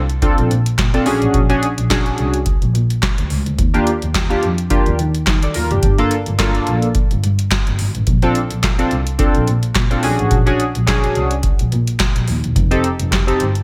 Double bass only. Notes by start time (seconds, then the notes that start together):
Already playing: C2
0.38 A#1
0.50 A#2
0.78 A#2
1.06 A#1
1.21 A1
1.34 A#1
1.78 A#1
2.19 C2
2.62 A#1
2.74 A#2
3.18 D2
3.30 C#2
3.46 D2
3.59 D#2
4.02 D#2
4.43 F2
4.87 D#2
4.99 D#3
5.27 D#3
5.55 D#2
5.71 F#1
5.83 G1
6.27 G1
6.67 A#1
7.11 G1
7.23 G2
7.67 G1
7.79 G#1
7.95 A1
8.07 A#1
8.51 A#1
8.91 C2
9.35 A#1
9.47 A#2
9.75 A#2
10.03 A#1
10.19 A1
10.31 A#1
10.75 A#1
11.16 C2
11.59 A#1
11.72 A#2
12.15 A#1
12.28 D#2
12.43 E1
12.56 F1
13.00 F1
13.41 G1